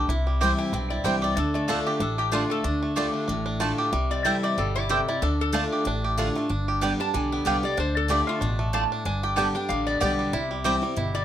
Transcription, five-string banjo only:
0.09 E4
0.27 G3
0.41 G4
0.59 E4
0.73 C4
0.91 E4
1.05 G3
1.22 G4
1.37 D4
1.54 A3
1.69 D4
1.86 G4
2.00 D4
2.18 G4
2.32 D4
2.50 A3
2.64 D4
2.83 A3
2.97 G4
3.14 D4
3.28 D4
3.46 D4
3.60 A3
3.78 G4
3.93 G3
4.11 C4
4.26 E4
4.43 G4
4.58 G3
4.76 E4
4.90 G4
5.09 E4
5.23 D4
5.54 D4
5.72 G4
5.87 D4
6.04 G4
6.19 D4
6.36 A3
6.50 D4
6.68 G4
6.82 G3
7.00 D4
7.14 G3
7.32 B3
7.47 G4
7.63 G3
7.78 D4
8.10 G4
8.27 A3
8.41 D4
8.59 A3
8.74 D4
8.92 D4
9.06 D4
9.23 G4
9.37 G3
9.55 D4
9.69 G3
9.87 B3
10.01 G4
10.19 G3
10.33 E4
10.51 G3
10.65 G4
10.83 G3
10.97 E4
11.15 G3

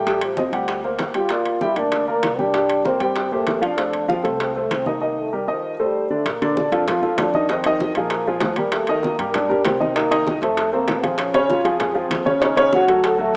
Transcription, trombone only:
Already playing: A3
0.24 F3
1.17 F4
1.63 E4
1.78 D4
2.09 A#3
2.41 D4
2.87 C4
3.02 C4
3.33 A3
3.64 D4
4.12 C4
4.41 C4
4.58 A3
4.72 C4
4.89 A#3
5.20 A3
5.35 G3
5.52 F3
5.82 G3
6.13 A3
6.29 A#3
6.59 D4
6.88 F4
7.20 D4
7.51 C4
7.96 A#3
8.28 F3
8.58 G3
8.73 A3
9.03 A#3
9.34 D4
9.65 C4
9.96 A#3
10.42 A3
10.73 A#3
11.03 C4
11.19 C#4
11.49 F4
11.80 G#4
11.95 C4
12.43 D#4
12.74 F#4
13.05 A4
13.21 A3

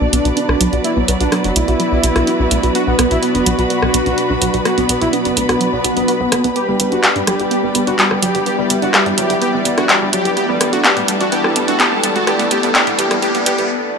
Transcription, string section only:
Already playing: E4 F#4 A4 B4 D5
0.17 B5
6.56 G4
6.87 D5
10.37 E4
10.51 A4
10.77 A5

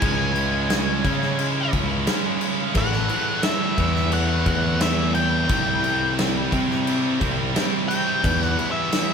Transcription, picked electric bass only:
0.02 C#2
1.04 C#3
1.73 C#2
2.74 A1
3.78 E2
4.46 E2
5.49 C2
6.53 C3
7.21 C2
8.24 E2

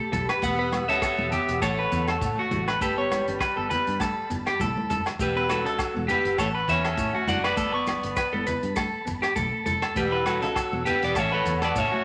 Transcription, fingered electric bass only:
0.13 B1
0.43 E1
0.89 C#2
1.19 E1
1.49 E1
1.62 A1
1.92 E2
2.21 A2
2.51 A1
2.81 G1
3.28 G1
3.58 G1
3.88 G2
4.31 G1
4.60 B1
4.90 F#1
5.19 E1
5.66 C#2
5.96 E1
6.25 G1
6.38 A1
6.68 E2
6.98 A2
7.28 F#1
7.57 G1
8.04 G1
8.34 G1
8.63 G2
9.07 G1
9.36 B1
9.67 F1
9.96 E1
10.43 C#2
10.73 E1
11.03 E1
11.16 A1
11.46 E2
11.75 A2

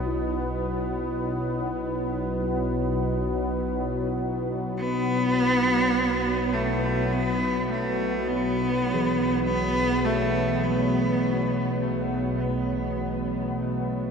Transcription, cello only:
4.78 B3
6.53 A3
7.12 B3
7.69 A3
8.28 B3
9.45 B3
10.05 A3
10.63 B3

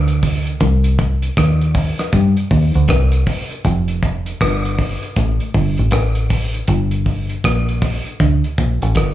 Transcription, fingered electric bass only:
Already playing: D2
0.61 C2
1.38 D#2
2.13 G2
2.51 D#2
2.75 D2
2.89 C2
3.65 F1
4.41 G1
5.17 A1
5.55 G1
5.79 A1
5.93 A1
6.69 G1
7.45 A#1
8.20 D2
8.59 A#1
8.82 A1
8.96 G1

